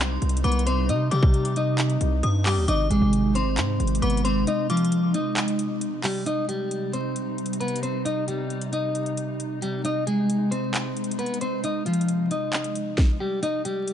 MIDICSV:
0, 0, Header, 1, 6, 480
1, 0, Start_track
1, 0, Key_signature, -3, "minor"
1, 0, Tempo, 447761
1, 954, Time_signature, 4, 2, 24, 8
1, 14936, End_track
2, 0, Start_track
2, 0, Title_t, "Synth bell"
2, 0, Program_c, 0, 98
2, 0, Note_on_c, 0, 84, 81
2, 432, Note_off_c, 0, 84, 0
2, 474, Note_on_c, 0, 86, 88
2, 702, Note_off_c, 0, 86, 0
2, 714, Note_on_c, 0, 84, 74
2, 943, Note_off_c, 0, 84, 0
2, 1192, Note_on_c, 0, 86, 79
2, 1421, Note_off_c, 0, 86, 0
2, 2394, Note_on_c, 0, 87, 86
2, 2622, Note_off_c, 0, 87, 0
2, 2634, Note_on_c, 0, 86, 74
2, 2862, Note_off_c, 0, 86, 0
2, 2873, Note_on_c, 0, 86, 97
2, 3551, Note_off_c, 0, 86, 0
2, 3599, Note_on_c, 0, 84, 74
2, 4274, Note_off_c, 0, 84, 0
2, 4313, Note_on_c, 0, 86, 91
2, 4542, Note_off_c, 0, 86, 0
2, 4555, Note_on_c, 0, 84, 80
2, 4783, Note_off_c, 0, 84, 0
2, 5036, Note_on_c, 0, 86, 77
2, 5263, Note_off_c, 0, 86, 0
2, 14936, End_track
3, 0, Start_track
3, 0, Title_t, "Clean electric guitar"
3, 0, Program_c, 1, 27
3, 0, Note_on_c, 1, 60, 59
3, 0, Note_on_c, 1, 72, 75
3, 431, Note_off_c, 1, 72, 0
3, 434, Note_off_c, 1, 60, 0
3, 474, Note_on_c, 1, 71, 78
3, 482, Note_on_c, 1, 59, 63
3, 672, Note_off_c, 1, 71, 0
3, 677, Note_off_c, 1, 59, 0
3, 713, Note_on_c, 1, 72, 77
3, 721, Note_on_c, 1, 60, 66
3, 912, Note_off_c, 1, 72, 0
3, 916, Note_off_c, 1, 60, 0
3, 955, Note_on_c, 1, 63, 94
3, 964, Note_on_c, 1, 75, 78
3, 1152, Note_off_c, 1, 63, 0
3, 1158, Note_off_c, 1, 75, 0
3, 1195, Note_on_c, 1, 67, 73
3, 1203, Note_on_c, 1, 55, 62
3, 1646, Note_off_c, 1, 67, 0
3, 1650, Note_off_c, 1, 55, 0
3, 1677, Note_on_c, 1, 63, 82
3, 1686, Note_on_c, 1, 75, 63
3, 2593, Note_off_c, 1, 63, 0
3, 2597, Note_off_c, 1, 75, 0
3, 2635, Note_on_c, 1, 67, 83
3, 2643, Note_on_c, 1, 55, 63
3, 2833, Note_off_c, 1, 67, 0
3, 2837, Note_off_c, 1, 55, 0
3, 2877, Note_on_c, 1, 63, 100
3, 2885, Note_on_c, 1, 75, 84
3, 3074, Note_off_c, 1, 63, 0
3, 3078, Note_off_c, 1, 75, 0
3, 3115, Note_on_c, 1, 68, 85
3, 3124, Note_on_c, 1, 56, 69
3, 3566, Note_off_c, 1, 68, 0
3, 3571, Note_off_c, 1, 56, 0
3, 3590, Note_on_c, 1, 72, 80
3, 3600, Note_on_c, 1, 60, 62
3, 4269, Note_off_c, 1, 72, 0
3, 4274, Note_off_c, 1, 60, 0
3, 4312, Note_on_c, 1, 71, 85
3, 4320, Note_on_c, 1, 59, 64
3, 4511, Note_off_c, 1, 71, 0
3, 4516, Note_off_c, 1, 59, 0
3, 4553, Note_on_c, 1, 72, 80
3, 4562, Note_on_c, 1, 60, 64
3, 4751, Note_off_c, 1, 72, 0
3, 4757, Note_off_c, 1, 60, 0
3, 4795, Note_on_c, 1, 63, 88
3, 4803, Note_on_c, 1, 75, 73
3, 4993, Note_off_c, 1, 63, 0
3, 4998, Note_off_c, 1, 75, 0
3, 5034, Note_on_c, 1, 65, 77
3, 5043, Note_on_c, 1, 53, 65
3, 5486, Note_off_c, 1, 65, 0
3, 5490, Note_off_c, 1, 53, 0
3, 5515, Note_on_c, 1, 63, 81
3, 5525, Note_on_c, 1, 75, 61
3, 6432, Note_off_c, 1, 63, 0
3, 6437, Note_off_c, 1, 75, 0
3, 6472, Note_on_c, 1, 67, 86
3, 6481, Note_on_c, 1, 55, 64
3, 6671, Note_off_c, 1, 67, 0
3, 6676, Note_off_c, 1, 55, 0
3, 6714, Note_on_c, 1, 63, 97
3, 6722, Note_on_c, 1, 75, 81
3, 6912, Note_off_c, 1, 63, 0
3, 6917, Note_off_c, 1, 75, 0
3, 6952, Note_on_c, 1, 67, 84
3, 6960, Note_on_c, 1, 55, 63
3, 7404, Note_off_c, 1, 67, 0
3, 7409, Note_off_c, 1, 55, 0
3, 7432, Note_on_c, 1, 72, 73
3, 7440, Note_on_c, 1, 60, 55
3, 8110, Note_off_c, 1, 72, 0
3, 8114, Note_off_c, 1, 60, 0
3, 8153, Note_on_c, 1, 71, 75
3, 8162, Note_on_c, 1, 59, 59
3, 8352, Note_off_c, 1, 71, 0
3, 8357, Note_off_c, 1, 59, 0
3, 8393, Note_on_c, 1, 72, 70
3, 8401, Note_on_c, 1, 60, 59
3, 8591, Note_off_c, 1, 72, 0
3, 8596, Note_off_c, 1, 60, 0
3, 8633, Note_on_c, 1, 63, 89
3, 8642, Note_on_c, 1, 75, 72
3, 8831, Note_off_c, 1, 63, 0
3, 8837, Note_off_c, 1, 75, 0
3, 8874, Note_on_c, 1, 67, 70
3, 8883, Note_on_c, 1, 55, 62
3, 9326, Note_off_c, 1, 67, 0
3, 9330, Note_off_c, 1, 55, 0
3, 9356, Note_on_c, 1, 63, 75
3, 9365, Note_on_c, 1, 75, 58
3, 10272, Note_off_c, 1, 63, 0
3, 10277, Note_off_c, 1, 75, 0
3, 10316, Note_on_c, 1, 67, 79
3, 10325, Note_on_c, 1, 55, 61
3, 10513, Note_off_c, 1, 67, 0
3, 10519, Note_off_c, 1, 55, 0
3, 10555, Note_on_c, 1, 63, 99
3, 10565, Note_on_c, 1, 75, 79
3, 10753, Note_off_c, 1, 63, 0
3, 10759, Note_off_c, 1, 75, 0
3, 10794, Note_on_c, 1, 68, 85
3, 10803, Note_on_c, 1, 56, 65
3, 11245, Note_off_c, 1, 68, 0
3, 11250, Note_off_c, 1, 56, 0
3, 11270, Note_on_c, 1, 72, 73
3, 11279, Note_on_c, 1, 60, 58
3, 11950, Note_off_c, 1, 72, 0
3, 11954, Note_off_c, 1, 60, 0
3, 11994, Note_on_c, 1, 71, 79
3, 12003, Note_on_c, 1, 59, 61
3, 12192, Note_off_c, 1, 71, 0
3, 12197, Note_off_c, 1, 59, 0
3, 12236, Note_on_c, 1, 72, 77
3, 12244, Note_on_c, 1, 60, 62
3, 12433, Note_off_c, 1, 72, 0
3, 12438, Note_off_c, 1, 60, 0
3, 12477, Note_on_c, 1, 63, 84
3, 12485, Note_on_c, 1, 75, 70
3, 12674, Note_off_c, 1, 63, 0
3, 12679, Note_off_c, 1, 75, 0
3, 12715, Note_on_c, 1, 65, 74
3, 12724, Note_on_c, 1, 53, 61
3, 13166, Note_off_c, 1, 65, 0
3, 13170, Note_off_c, 1, 53, 0
3, 13197, Note_on_c, 1, 63, 73
3, 13206, Note_on_c, 1, 75, 57
3, 14113, Note_off_c, 1, 63, 0
3, 14117, Note_off_c, 1, 75, 0
3, 14155, Note_on_c, 1, 67, 84
3, 14163, Note_on_c, 1, 55, 64
3, 14353, Note_off_c, 1, 67, 0
3, 14358, Note_off_c, 1, 55, 0
3, 14394, Note_on_c, 1, 63, 105
3, 14403, Note_on_c, 1, 75, 84
3, 14592, Note_off_c, 1, 63, 0
3, 14597, Note_off_c, 1, 75, 0
3, 14633, Note_on_c, 1, 67, 81
3, 14641, Note_on_c, 1, 55, 65
3, 14936, Note_off_c, 1, 55, 0
3, 14936, Note_off_c, 1, 67, 0
3, 14936, End_track
4, 0, Start_track
4, 0, Title_t, "Ambient pad"
4, 0, Program_c, 2, 92
4, 0, Note_on_c, 2, 48, 81
4, 0, Note_on_c, 2, 55, 74
4, 0, Note_on_c, 2, 63, 90
4, 2837, Note_off_c, 2, 55, 0
4, 2873, Note_on_c, 2, 56, 74
4, 6672, Note_off_c, 2, 48, 0
4, 6672, Note_off_c, 2, 63, 0
4, 6675, Note_off_c, 2, 56, 0
4, 6713, Note_on_c, 2, 63, 83
4, 6714, Note_on_c, 2, 48, 77
4, 6714, Note_on_c, 2, 55, 71
4, 10516, Note_off_c, 2, 55, 0
4, 10556, Note_on_c, 2, 56, 72
4, 13871, Note_off_c, 2, 48, 0
4, 13871, Note_off_c, 2, 63, 0
4, 13882, Note_off_c, 2, 56, 0
4, 14936, End_track
5, 0, Start_track
5, 0, Title_t, "808-style bass"
5, 0, Program_c, 3, 38
5, 0, Note_on_c, 3, 36, 112
5, 197, Note_off_c, 3, 36, 0
5, 234, Note_on_c, 3, 36, 107
5, 465, Note_off_c, 3, 36, 0
5, 475, Note_on_c, 3, 36, 110
5, 955, Note_on_c, 3, 48, 101
5, 971, Note_off_c, 3, 36, 0
5, 1183, Note_off_c, 3, 48, 0
5, 1194, Note_on_c, 3, 48, 111
5, 2116, Note_off_c, 3, 48, 0
5, 2154, Note_on_c, 3, 36, 107
5, 2385, Note_off_c, 3, 36, 0
5, 2394, Note_on_c, 3, 43, 107
5, 2754, Note_on_c, 3, 39, 102
5, 2770, Note_off_c, 3, 43, 0
5, 2868, Note_off_c, 3, 39, 0
5, 2873, Note_on_c, 3, 32, 117
5, 3104, Note_off_c, 3, 32, 0
5, 3113, Note_on_c, 3, 32, 107
5, 3227, Note_off_c, 3, 32, 0
5, 3233, Note_on_c, 3, 32, 106
5, 3833, Note_on_c, 3, 44, 98
5, 3849, Note_off_c, 3, 32, 0
5, 4062, Note_off_c, 3, 44, 0
5, 4072, Note_on_c, 3, 32, 107
5, 4304, Note_off_c, 3, 32, 0
5, 4312, Note_on_c, 3, 32, 112
5, 4774, Note_off_c, 3, 32, 0
5, 14936, End_track
6, 0, Start_track
6, 0, Title_t, "Drums"
6, 235, Note_on_c, 9, 42, 47
6, 315, Note_off_c, 9, 42, 0
6, 315, Note_on_c, 9, 42, 65
6, 395, Note_off_c, 9, 42, 0
6, 395, Note_on_c, 9, 42, 82
6, 475, Note_off_c, 9, 42, 0
6, 475, Note_on_c, 9, 42, 46
6, 555, Note_off_c, 9, 42, 0
6, 555, Note_on_c, 9, 42, 64
6, 634, Note_off_c, 9, 42, 0
6, 634, Note_on_c, 9, 42, 77
6, 715, Note_off_c, 9, 42, 0
6, 715, Note_on_c, 9, 42, 81
6, 822, Note_off_c, 9, 42, 0
6, 955, Note_on_c, 9, 42, 90
6, 1062, Note_off_c, 9, 42, 0
6, 1194, Note_on_c, 9, 42, 73
6, 1302, Note_off_c, 9, 42, 0
6, 1313, Note_on_c, 9, 36, 99
6, 1421, Note_off_c, 9, 36, 0
6, 1434, Note_on_c, 9, 42, 47
6, 1541, Note_off_c, 9, 42, 0
6, 1554, Note_on_c, 9, 42, 85
6, 1661, Note_off_c, 9, 42, 0
6, 1673, Note_on_c, 9, 42, 72
6, 1781, Note_off_c, 9, 42, 0
6, 1913, Note_on_c, 9, 39, 115
6, 1913, Note_on_c, 9, 42, 75
6, 2020, Note_off_c, 9, 39, 0
6, 2020, Note_off_c, 9, 42, 0
6, 2033, Note_on_c, 9, 42, 45
6, 2140, Note_off_c, 9, 42, 0
6, 2153, Note_on_c, 9, 42, 88
6, 2260, Note_off_c, 9, 42, 0
6, 2393, Note_on_c, 9, 42, 75
6, 2501, Note_off_c, 9, 42, 0
6, 2634, Note_on_c, 9, 39, 98
6, 2634, Note_on_c, 9, 46, 93
6, 2741, Note_off_c, 9, 39, 0
6, 2741, Note_off_c, 9, 46, 0
6, 2873, Note_on_c, 9, 42, 93
6, 2980, Note_off_c, 9, 42, 0
6, 3115, Note_on_c, 9, 42, 75
6, 3222, Note_off_c, 9, 42, 0
6, 3354, Note_on_c, 9, 42, 86
6, 3461, Note_off_c, 9, 42, 0
6, 3594, Note_on_c, 9, 42, 73
6, 3701, Note_off_c, 9, 42, 0
6, 3833, Note_on_c, 9, 39, 113
6, 3833, Note_on_c, 9, 42, 74
6, 3940, Note_off_c, 9, 39, 0
6, 3941, Note_off_c, 9, 42, 0
6, 4074, Note_on_c, 9, 42, 50
6, 4154, Note_off_c, 9, 42, 0
6, 4154, Note_on_c, 9, 42, 68
6, 4234, Note_off_c, 9, 42, 0
6, 4234, Note_on_c, 9, 42, 85
6, 4315, Note_off_c, 9, 42, 0
6, 4315, Note_on_c, 9, 42, 48
6, 4394, Note_off_c, 9, 42, 0
6, 4394, Note_on_c, 9, 42, 60
6, 4475, Note_off_c, 9, 42, 0
6, 4475, Note_on_c, 9, 42, 78
6, 4555, Note_off_c, 9, 42, 0
6, 4555, Note_on_c, 9, 42, 82
6, 4662, Note_off_c, 9, 42, 0
6, 4794, Note_on_c, 9, 42, 90
6, 4901, Note_off_c, 9, 42, 0
6, 5034, Note_on_c, 9, 42, 61
6, 5114, Note_off_c, 9, 42, 0
6, 5114, Note_on_c, 9, 42, 61
6, 5193, Note_off_c, 9, 42, 0
6, 5193, Note_on_c, 9, 42, 63
6, 5273, Note_off_c, 9, 42, 0
6, 5273, Note_on_c, 9, 42, 77
6, 5380, Note_off_c, 9, 42, 0
6, 5512, Note_on_c, 9, 42, 73
6, 5620, Note_off_c, 9, 42, 0
6, 5752, Note_on_c, 9, 39, 113
6, 5753, Note_on_c, 9, 42, 64
6, 5860, Note_off_c, 9, 39, 0
6, 5860, Note_off_c, 9, 42, 0
6, 5874, Note_on_c, 9, 42, 63
6, 5981, Note_off_c, 9, 42, 0
6, 5993, Note_on_c, 9, 42, 85
6, 6101, Note_off_c, 9, 42, 0
6, 6233, Note_on_c, 9, 42, 74
6, 6340, Note_off_c, 9, 42, 0
6, 6473, Note_on_c, 9, 39, 98
6, 6473, Note_on_c, 9, 46, 89
6, 6580, Note_off_c, 9, 39, 0
6, 6580, Note_off_c, 9, 46, 0
6, 6713, Note_on_c, 9, 42, 88
6, 6820, Note_off_c, 9, 42, 0
6, 6954, Note_on_c, 9, 42, 67
6, 7061, Note_off_c, 9, 42, 0
6, 7194, Note_on_c, 9, 42, 80
6, 7301, Note_off_c, 9, 42, 0
6, 7434, Note_on_c, 9, 42, 68
6, 7541, Note_off_c, 9, 42, 0
6, 7675, Note_on_c, 9, 42, 69
6, 7782, Note_off_c, 9, 42, 0
6, 7914, Note_on_c, 9, 42, 48
6, 7995, Note_off_c, 9, 42, 0
6, 7995, Note_on_c, 9, 42, 64
6, 8075, Note_off_c, 9, 42, 0
6, 8075, Note_on_c, 9, 42, 77
6, 8155, Note_off_c, 9, 42, 0
6, 8155, Note_on_c, 9, 42, 45
6, 8235, Note_off_c, 9, 42, 0
6, 8235, Note_on_c, 9, 42, 59
6, 8315, Note_off_c, 9, 42, 0
6, 8315, Note_on_c, 9, 42, 72
6, 8395, Note_off_c, 9, 42, 0
6, 8395, Note_on_c, 9, 42, 79
6, 8502, Note_off_c, 9, 42, 0
6, 8635, Note_on_c, 9, 42, 88
6, 8743, Note_off_c, 9, 42, 0
6, 8874, Note_on_c, 9, 42, 68
6, 8981, Note_off_c, 9, 42, 0
6, 9114, Note_on_c, 9, 42, 47
6, 9221, Note_off_c, 9, 42, 0
6, 9234, Note_on_c, 9, 42, 78
6, 9341, Note_off_c, 9, 42, 0
6, 9355, Note_on_c, 9, 42, 68
6, 9462, Note_off_c, 9, 42, 0
6, 9595, Note_on_c, 9, 42, 74
6, 9702, Note_off_c, 9, 42, 0
6, 9715, Note_on_c, 9, 42, 41
6, 9822, Note_off_c, 9, 42, 0
6, 9835, Note_on_c, 9, 42, 83
6, 9943, Note_off_c, 9, 42, 0
6, 10075, Note_on_c, 9, 42, 72
6, 10183, Note_off_c, 9, 42, 0
6, 10315, Note_on_c, 9, 42, 80
6, 10422, Note_off_c, 9, 42, 0
6, 10555, Note_on_c, 9, 42, 87
6, 10663, Note_off_c, 9, 42, 0
6, 10796, Note_on_c, 9, 42, 68
6, 10903, Note_off_c, 9, 42, 0
6, 11036, Note_on_c, 9, 42, 82
6, 11143, Note_off_c, 9, 42, 0
6, 11276, Note_on_c, 9, 42, 70
6, 11383, Note_off_c, 9, 42, 0
6, 11515, Note_on_c, 9, 39, 109
6, 11516, Note_on_c, 9, 42, 71
6, 11623, Note_off_c, 9, 39, 0
6, 11623, Note_off_c, 9, 42, 0
6, 11756, Note_on_c, 9, 42, 48
6, 11836, Note_off_c, 9, 42, 0
6, 11836, Note_on_c, 9, 42, 62
6, 11915, Note_off_c, 9, 42, 0
6, 11915, Note_on_c, 9, 42, 78
6, 11996, Note_off_c, 9, 42, 0
6, 11996, Note_on_c, 9, 42, 46
6, 12075, Note_off_c, 9, 42, 0
6, 12075, Note_on_c, 9, 42, 60
6, 12155, Note_off_c, 9, 42, 0
6, 12155, Note_on_c, 9, 42, 72
6, 12234, Note_off_c, 9, 42, 0
6, 12234, Note_on_c, 9, 42, 76
6, 12341, Note_off_c, 9, 42, 0
6, 12474, Note_on_c, 9, 42, 86
6, 12581, Note_off_c, 9, 42, 0
6, 12714, Note_on_c, 9, 42, 57
6, 12793, Note_off_c, 9, 42, 0
6, 12793, Note_on_c, 9, 42, 59
6, 12874, Note_off_c, 9, 42, 0
6, 12874, Note_on_c, 9, 42, 57
6, 12954, Note_off_c, 9, 42, 0
6, 12954, Note_on_c, 9, 42, 73
6, 13061, Note_off_c, 9, 42, 0
6, 13195, Note_on_c, 9, 42, 69
6, 13302, Note_off_c, 9, 42, 0
6, 13433, Note_on_c, 9, 39, 110
6, 13434, Note_on_c, 9, 42, 61
6, 13540, Note_off_c, 9, 39, 0
6, 13541, Note_off_c, 9, 42, 0
6, 13554, Note_on_c, 9, 42, 62
6, 13662, Note_off_c, 9, 42, 0
6, 13674, Note_on_c, 9, 42, 85
6, 13781, Note_off_c, 9, 42, 0
6, 13914, Note_on_c, 9, 36, 109
6, 13914, Note_on_c, 9, 38, 91
6, 14021, Note_off_c, 9, 38, 0
6, 14022, Note_off_c, 9, 36, 0
6, 14394, Note_on_c, 9, 42, 93
6, 14501, Note_off_c, 9, 42, 0
6, 14633, Note_on_c, 9, 42, 70
6, 14741, Note_off_c, 9, 42, 0
6, 14874, Note_on_c, 9, 42, 83
6, 14936, Note_off_c, 9, 42, 0
6, 14936, End_track
0, 0, End_of_file